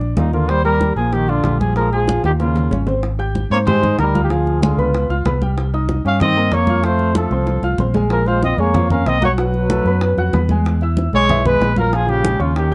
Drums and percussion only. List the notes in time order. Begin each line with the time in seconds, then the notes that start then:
0.01 high bongo, high conga
0.17 high bongo, low bongo, high conga
0.33 high bongo, high conga
0.49 high bongo, high conga
0.65 high conga
0.81 high bongo, high conga
0.97 high bongo, high conga
1.13 high bongo, high conga
1.28 high bongo, high conga
1.44 high bongo, low bongo, high conga
1.60 high bongo, high conga
1.76 high bongo, high conga
1.93 high conga
2.08 high bongo, high conga
2.24 high bongo, high conga
2.40 high bongo, high conga
2.56 low bongo, high conga
2.71 low bongo, high conga
2.87 low bongo, high conga
3.03 high bongo, high conga
3.20 high conga
3.35 high bongo, high conga
3.51 high conga
3.67 high bongo, high conga, low conga
3.83 high conga, low conga
3.99 high bongo, low bongo, high conga
4.15 high conga
4.30 high bongo, high conga
4.46 high bongo, high conga
4.62 high bongo, high conga
4.79 high bongo, high conga
4.95 high bongo, high conga
5.10 high bongo, high conga
5.25 high bongo, low bongo, high conga
5.42 high conga
5.58 high bongo, high conga
5.74 high conga
5.89 high bongo, high conga
6.06 high conga
6.20 high bongo, high conga, low conga
6.37 high conga
6.52 high bongo, low bongo, high conga
6.67 high conga
6.83 high bongo, high conga
6.99 high bongo, high conga
7.15 high bongo, high conga
7.31 high bongo, high conga
7.47 high bongo, high conga
7.63 high bongo, high conga
7.78 low bongo, high conga
7.94 low bongo, high conga
8.10 high bongo, high conga
8.26 high conga
8.43 high bongo, high conga
8.58 high conga
8.74 high bongo, high conga, low conga
8.90 high conga, low conga
9.06 high bongo, low bongo, high conga
9.22 high conga
9.38 high bongo, high conga
9.54 high bongo, high conga
9.70 high bongo, high conga
9.86 high bongo, high conga
10.01 high bongo, high conga
10.18 high bongo, high conga
10.33 high bongo, low bongo, high conga
10.49 high conga
10.65 high bongo, high conga
10.81 high conga
10.97 high bongo, high conga
11.13 high conga
11.29 high bongo, high conga, low conga
11.46 high conga, low conga
11.61 high bongo, low bongo, high conga
11.76 high conga
11.93 high bongo, high conga
12.09 high bongo, high conga
12.25 high bongo, high conga
12.40 high bongo, high conga
12.56 high bongo, high conga